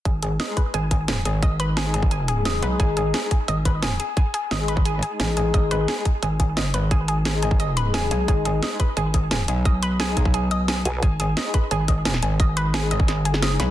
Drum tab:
HH |x-x-x-x-x-x-x-x-|x-x-x-x-x-x-x-x-|x-x-x-x-x-x-x-x-|x-x-x-x-x-x-x-x-|
SD |----o-------o---|----o-------o---|----o-------o---|----o-------o---|
BD |o-----o---o-----|o------o--------|o-----o---o-----|o------o--------|

HH |x-x-x-x-x-x-x-x-|x-x-x-x-x-x-x-x-|x-x-x-x-x-x-x-x-|x-x-x-x-x-x-x-x-|
SD |----o-------o---|----o-------o---|----o-------o---|----o-------o---|
BD |o-----o---o-----|o------o--------|o-----o---o-----|o-----oo--------|

HH |x-x-x-x-x-x-x-x-|x-x-x-x-x-x-x-x-|
SD |----o-------oo--|----o---o--oo-o-|
BD |o-----o---o-----|o------o--------|